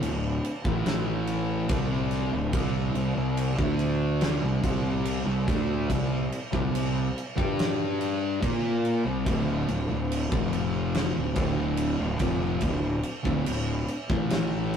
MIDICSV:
0, 0, Header, 1, 4, 480
1, 0, Start_track
1, 0, Key_signature, -1, "minor"
1, 0, Tempo, 841515
1, 1444, Time_signature, 4, 2, 24, 8
1, 8424, End_track
2, 0, Start_track
2, 0, Title_t, "Distorted electric guitar"
2, 0, Program_c, 0, 30
2, 16, Note_on_c, 0, 38, 64
2, 19, Note_on_c, 0, 45, 69
2, 203, Note_off_c, 0, 38, 0
2, 204, Note_off_c, 0, 45, 0
2, 377, Note_on_c, 0, 45, 93
2, 378, Note_on_c, 0, 52, 88
2, 383, Note_on_c, 0, 57, 110
2, 963, Note_off_c, 0, 45, 0
2, 964, Note_off_c, 0, 52, 0
2, 966, Note_off_c, 0, 57, 0
2, 975, Note_on_c, 0, 48, 111
2, 980, Note_on_c, 0, 55, 96
2, 980, Note_on_c, 0, 60, 118
2, 1322, Note_off_c, 0, 48, 0
2, 1325, Note_off_c, 0, 55, 0
2, 1325, Note_off_c, 0, 60, 0
2, 1332, Note_on_c, 0, 38, 61
2, 1333, Note_on_c, 0, 45, 72
2, 1448, Note_off_c, 0, 38, 0
2, 1448, Note_off_c, 0, 45, 0
2, 1454, Note_on_c, 0, 48, 96
2, 1456, Note_on_c, 0, 55, 96
2, 1456, Note_on_c, 0, 60, 101
2, 1681, Note_off_c, 0, 48, 0
2, 1682, Note_off_c, 0, 55, 0
2, 1682, Note_off_c, 0, 60, 0
2, 1688, Note_on_c, 0, 48, 74
2, 1688, Note_on_c, 0, 55, 74
2, 1801, Note_off_c, 0, 48, 0
2, 1804, Note_off_c, 0, 55, 0
2, 1808, Note_on_c, 0, 48, 65
2, 1811, Note_on_c, 0, 55, 75
2, 1998, Note_off_c, 0, 48, 0
2, 1999, Note_off_c, 0, 55, 0
2, 2049, Note_on_c, 0, 50, 104
2, 2051, Note_on_c, 0, 57, 103
2, 2059, Note_on_c, 0, 62, 104
2, 2518, Note_off_c, 0, 50, 0
2, 2519, Note_off_c, 0, 57, 0
2, 2523, Note_off_c, 0, 62, 0
2, 2527, Note_on_c, 0, 48, 65
2, 2528, Note_on_c, 0, 55, 76
2, 2637, Note_off_c, 0, 48, 0
2, 2642, Note_off_c, 0, 55, 0
2, 2644, Note_on_c, 0, 48, 109
2, 2649, Note_on_c, 0, 55, 117
2, 2649, Note_on_c, 0, 60, 105
2, 2995, Note_off_c, 0, 48, 0
2, 2997, Note_off_c, 0, 55, 0
2, 2998, Note_off_c, 0, 60, 0
2, 3002, Note_on_c, 0, 48, 61
2, 3004, Note_on_c, 0, 55, 71
2, 3122, Note_off_c, 0, 48, 0
2, 3123, Note_off_c, 0, 55, 0
2, 3125, Note_on_c, 0, 50, 87
2, 3129, Note_on_c, 0, 57, 114
2, 3134, Note_on_c, 0, 62, 117
2, 3356, Note_off_c, 0, 50, 0
2, 3358, Note_off_c, 0, 57, 0
2, 3361, Note_off_c, 0, 62, 0
2, 3367, Note_on_c, 0, 48, 58
2, 3370, Note_on_c, 0, 55, 81
2, 3556, Note_off_c, 0, 48, 0
2, 3558, Note_off_c, 0, 55, 0
2, 3719, Note_on_c, 0, 48, 90
2, 3722, Note_on_c, 0, 55, 102
2, 3832, Note_off_c, 0, 55, 0
2, 3833, Note_off_c, 0, 48, 0
2, 3839, Note_on_c, 0, 55, 67
2, 3840, Note_on_c, 0, 48, 69
2, 4032, Note_off_c, 0, 48, 0
2, 4032, Note_off_c, 0, 55, 0
2, 4199, Note_on_c, 0, 55, 82
2, 4201, Note_on_c, 0, 62, 105
2, 4205, Note_on_c, 0, 67, 116
2, 4793, Note_off_c, 0, 55, 0
2, 4794, Note_off_c, 0, 62, 0
2, 4796, Note_off_c, 0, 67, 0
2, 4804, Note_on_c, 0, 58, 100
2, 4808, Note_on_c, 0, 65, 114
2, 4811, Note_on_c, 0, 70, 106
2, 5156, Note_off_c, 0, 58, 0
2, 5158, Note_off_c, 0, 65, 0
2, 5159, Note_off_c, 0, 70, 0
2, 5163, Note_on_c, 0, 48, 58
2, 5164, Note_on_c, 0, 55, 71
2, 5278, Note_off_c, 0, 48, 0
2, 5280, Note_off_c, 0, 55, 0
2, 5280, Note_on_c, 0, 38, 83
2, 5282, Note_on_c, 0, 45, 97
2, 5285, Note_on_c, 0, 50, 101
2, 5513, Note_off_c, 0, 38, 0
2, 5514, Note_off_c, 0, 45, 0
2, 5516, Note_off_c, 0, 50, 0
2, 5522, Note_on_c, 0, 38, 67
2, 5522, Note_on_c, 0, 45, 82
2, 5638, Note_off_c, 0, 38, 0
2, 5641, Note_off_c, 0, 45, 0
2, 5645, Note_on_c, 0, 38, 67
2, 5651, Note_on_c, 0, 45, 67
2, 5835, Note_off_c, 0, 38, 0
2, 5838, Note_off_c, 0, 45, 0
2, 5884, Note_on_c, 0, 41, 89
2, 5887, Note_on_c, 0, 48, 99
2, 5890, Note_on_c, 0, 53, 101
2, 6355, Note_off_c, 0, 41, 0
2, 6357, Note_off_c, 0, 48, 0
2, 6359, Note_off_c, 0, 53, 0
2, 6360, Note_on_c, 0, 38, 54
2, 6364, Note_on_c, 0, 45, 72
2, 6468, Note_off_c, 0, 38, 0
2, 6473, Note_off_c, 0, 45, 0
2, 6475, Note_on_c, 0, 38, 108
2, 6480, Note_on_c, 0, 45, 113
2, 6482, Note_on_c, 0, 50, 123
2, 6831, Note_off_c, 0, 38, 0
2, 6833, Note_off_c, 0, 45, 0
2, 6835, Note_off_c, 0, 50, 0
2, 6843, Note_on_c, 0, 38, 69
2, 6846, Note_on_c, 0, 45, 72
2, 6959, Note_off_c, 0, 38, 0
2, 6962, Note_on_c, 0, 41, 91
2, 6963, Note_off_c, 0, 45, 0
2, 6965, Note_on_c, 0, 48, 102
2, 6969, Note_on_c, 0, 53, 100
2, 7194, Note_off_c, 0, 41, 0
2, 7196, Note_off_c, 0, 48, 0
2, 7198, Note_off_c, 0, 53, 0
2, 7202, Note_on_c, 0, 38, 62
2, 7205, Note_on_c, 0, 45, 77
2, 7394, Note_off_c, 0, 38, 0
2, 7395, Note_off_c, 0, 45, 0
2, 7551, Note_on_c, 0, 38, 90
2, 7560, Note_on_c, 0, 45, 98
2, 7669, Note_off_c, 0, 38, 0
2, 7673, Note_off_c, 0, 45, 0
2, 7680, Note_on_c, 0, 38, 70
2, 7683, Note_on_c, 0, 45, 75
2, 7873, Note_off_c, 0, 38, 0
2, 7874, Note_off_c, 0, 45, 0
2, 8042, Note_on_c, 0, 45, 95
2, 8050, Note_on_c, 0, 52, 101
2, 8050, Note_on_c, 0, 57, 97
2, 8424, Note_off_c, 0, 45, 0
2, 8424, Note_off_c, 0, 52, 0
2, 8424, Note_off_c, 0, 57, 0
2, 8424, End_track
3, 0, Start_track
3, 0, Title_t, "Fingered electric bass"
3, 0, Program_c, 1, 33
3, 7, Note_on_c, 1, 26, 74
3, 229, Note_off_c, 1, 26, 0
3, 366, Note_on_c, 1, 33, 96
3, 942, Note_off_c, 1, 33, 0
3, 965, Note_on_c, 1, 36, 105
3, 1301, Note_off_c, 1, 36, 0
3, 1324, Note_on_c, 1, 26, 99
3, 1436, Note_off_c, 1, 26, 0
3, 1442, Note_on_c, 1, 36, 95
3, 1666, Note_off_c, 1, 36, 0
3, 1675, Note_on_c, 1, 36, 80
3, 1791, Note_off_c, 1, 36, 0
3, 1804, Note_on_c, 1, 36, 83
3, 2026, Note_off_c, 1, 36, 0
3, 2045, Note_on_c, 1, 38, 96
3, 2500, Note_off_c, 1, 38, 0
3, 2522, Note_on_c, 1, 36, 77
3, 2634, Note_off_c, 1, 36, 0
3, 2642, Note_on_c, 1, 36, 98
3, 2979, Note_off_c, 1, 36, 0
3, 3000, Note_on_c, 1, 36, 85
3, 3112, Note_off_c, 1, 36, 0
3, 3123, Note_on_c, 1, 38, 95
3, 3346, Note_off_c, 1, 38, 0
3, 3362, Note_on_c, 1, 36, 73
3, 3585, Note_off_c, 1, 36, 0
3, 3726, Note_on_c, 1, 36, 91
3, 3833, Note_off_c, 1, 36, 0
3, 3836, Note_on_c, 1, 36, 70
3, 4062, Note_off_c, 1, 36, 0
3, 4205, Note_on_c, 1, 43, 101
3, 4780, Note_off_c, 1, 43, 0
3, 4804, Note_on_c, 1, 46, 104
3, 5140, Note_off_c, 1, 46, 0
3, 5157, Note_on_c, 1, 36, 86
3, 5271, Note_off_c, 1, 36, 0
3, 5280, Note_on_c, 1, 26, 89
3, 5504, Note_off_c, 1, 26, 0
3, 5528, Note_on_c, 1, 26, 76
3, 5636, Note_off_c, 1, 26, 0
3, 5642, Note_on_c, 1, 26, 77
3, 5865, Note_off_c, 1, 26, 0
3, 5884, Note_on_c, 1, 29, 104
3, 6340, Note_off_c, 1, 29, 0
3, 6365, Note_on_c, 1, 26, 84
3, 6475, Note_off_c, 1, 26, 0
3, 6480, Note_on_c, 1, 26, 101
3, 6818, Note_off_c, 1, 26, 0
3, 6840, Note_on_c, 1, 26, 83
3, 6952, Note_off_c, 1, 26, 0
3, 6957, Note_on_c, 1, 29, 95
3, 7182, Note_off_c, 1, 29, 0
3, 7197, Note_on_c, 1, 26, 83
3, 7422, Note_off_c, 1, 26, 0
3, 7558, Note_on_c, 1, 26, 89
3, 7671, Note_off_c, 1, 26, 0
3, 7680, Note_on_c, 1, 26, 78
3, 7904, Note_off_c, 1, 26, 0
3, 8039, Note_on_c, 1, 33, 97
3, 8424, Note_off_c, 1, 33, 0
3, 8424, End_track
4, 0, Start_track
4, 0, Title_t, "Drums"
4, 14, Note_on_c, 9, 49, 81
4, 71, Note_off_c, 9, 49, 0
4, 254, Note_on_c, 9, 49, 59
4, 311, Note_off_c, 9, 49, 0
4, 371, Note_on_c, 9, 36, 114
4, 428, Note_off_c, 9, 36, 0
4, 490, Note_on_c, 9, 49, 68
4, 495, Note_on_c, 9, 38, 105
4, 547, Note_off_c, 9, 49, 0
4, 552, Note_off_c, 9, 38, 0
4, 726, Note_on_c, 9, 49, 67
4, 783, Note_off_c, 9, 49, 0
4, 964, Note_on_c, 9, 49, 77
4, 967, Note_on_c, 9, 36, 118
4, 1021, Note_off_c, 9, 49, 0
4, 1024, Note_off_c, 9, 36, 0
4, 1202, Note_on_c, 9, 49, 56
4, 1208, Note_on_c, 9, 38, 29
4, 1259, Note_off_c, 9, 49, 0
4, 1265, Note_off_c, 9, 38, 0
4, 1443, Note_on_c, 9, 49, 82
4, 1445, Note_on_c, 9, 36, 107
4, 1500, Note_off_c, 9, 49, 0
4, 1502, Note_off_c, 9, 36, 0
4, 1683, Note_on_c, 9, 49, 63
4, 1740, Note_off_c, 9, 49, 0
4, 1923, Note_on_c, 9, 49, 90
4, 1980, Note_off_c, 9, 49, 0
4, 2045, Note_on_c, 9, 36, 107
4, 2102, Note_off_c, 9, 36, 0
4, 2161, Note_on_c, 9, 49, 59
4, 2218, Note_off_c, 9, 49, 0
4, 2401, Note_on_c, 9, 49, 77
4, 2407, Note_on_c, 9, 38, 105
4, 2458, Note_off_c, 9, 49, 0
4, 2464, Note_off_c, 9, 38, 0
4, 2643, Note_on_c, 9, 49, 73
4, 2644, Note_on_c, 9, 36, 108
4, 2700, Note_off_c, 9, 49, 0
4, 2701, Note_off_c, 9, 36, 0
4, 2883, Note_on_c, 9, 49, 85
4, 2940, Note_off_c, 9, 49, 0
4, 3125, Note_on_c, 9, 36, 110
4, 3129, Note_on_c, 9, 49, 62
4, 3135, Note_on_c, 9, 38, 32
4, 3182, Note_off_c, 9, 36, 0
4, 3186, Note_off_c, 9, 49, 0
4, 3192, Note_off_c, 9, 38, 0
4, 3364, Note_on_c, 9, 36, 91
4, 3367, Note_on_c, 9, 49, 84
4, 3421, Note_off_c, 9, 36, 0
4, 3424, Note_off_c, 9, 49, 0
4, 3607, Note_on_c, 9, 49, 62
4, 3664, Note_off_c, 9, 49, 0
4, 3725, Note_on_c, 9, 36, 90
4, 3782, Note_off_c, 9, 36, 0
4, 3849, Note_on_c, 9, 49, 94
4, 3906, Note_off_c, 9, 49, 0
4, 4094, Note_on_c, 9, 49, 57
4, 4151, Note_off_c, 9, 49, 0
4, 4209, Note_on_c, 9, 36, 103
4, 4266, Note_off_c, 9, 36, 0
4, 4330, Note_on_c, 9, 49, 74
4, 4335, Note_on_c, 9, 38, 105
4, 4387, Note_off_c, 9, 49, 0
4, 4392, Note_off_c, 9, 38, 0
4, 4567, Note_on_c, 9, 49, 63
4, 4624, Note_off_c, 9, 49, 0
4, 4806, Note_on_c, 9, 36, 101
4, 4806, Note_on_c, 9, 49, 70
4, 4863, Note_off_c, 9, 36, 0
4, 4863, Note_off_c, 9, 49, 0
4, 5046, Note_on_c, 9, 49, 59
4, 5103, Note_off_c, 9, 49, 0
4, 5284, Note_on_c, 9, 36, 108
4, 5285, Note_on_c, 9, 49, 74
4, 5341, Note_off_c, 9, 36, 0
4, 5342, Note_off_c, 9, 49, 0
4, 5524, Note_on_c, 9, 49, 55
4, 5581, Note_off_c, 9, 49, 0
4, 5770, Note_on_c, 9, 49, 90
4, 5827, Note_off_c, 9, 49, 0
4, 5886, Note_on_c, 9, 36, 117
4, 5944, Note_off_c, 9, 36, 0
4, 6005, Note_on_c, 9, 49, 58
4, 6062, Note_off_c, 9, 49, 0
4, 6243, Note_on_c, 9, 49, 78
4, 6249, Note_on_c, 9, 38, 105
4, 6300, Note_off_c, 9, 49, 0
4, 6306, Note_off_c, 9, 38, 0
4, 6477, Note_on_c, 9, 49, 68
4, 6481, Note_on_c, 9, 36, 105
4, 6534, Note_off_c, 9, 49, 0
4, 6538, Note_off_c, 9, 36, 0
4, 6715, Note_on_c, 9, 49, 90
4, 6772, Note_off_c, 9, 49, 0
4, 6954, Note_on_c, 9, 49, 66
4, 6959, Note_on_c, 9, 36, 101
4, 7011, Note_off_c, 9, 49, 0
4, 7016, Note_off_c, 9, 36, 0
4, 7190, Note_on_c, 9, 49, 82
4, 7198, Note_on_c, 9, 36, 89
4, 7247, Note_off_c, 9, 49, 0
4, 7255, Note_off_c, 9, 36, 0
4, 7434, Note_on_c, 9, 49, 67
4, 7491, Note_off_c, 9, 49, 0
4, 7559, Note_on_c, 9, 36, 97
4, 7616, Note_off_c, 9, 36, 0
4, 7679, Note_on_c, 9, 49, 98
4, 7736, Note_off_c, 9, 49, 0
4, 7919, Note_on_c, 9, 49, 62
4, 7976, Note_off_c, 9, 49, 0
4, 8041, Note_on_c, 9, 36, 115
4, 8098, Note_off_c, 9, 36, 0
4, 8159, Note_on_c, 9, 49, 86
4, 8164, Note_on_c, 9, 38, 107
4, 8216, Note_off_c, 9, 49, 0
4, 8221, Note_off_c, 9, 38, 0
4, 8406, Note_on_c, 9, 49, 59
4, 8424, Note_off_c, 9, 49, 0
4, 8424, End_track
0, 0, End_of_file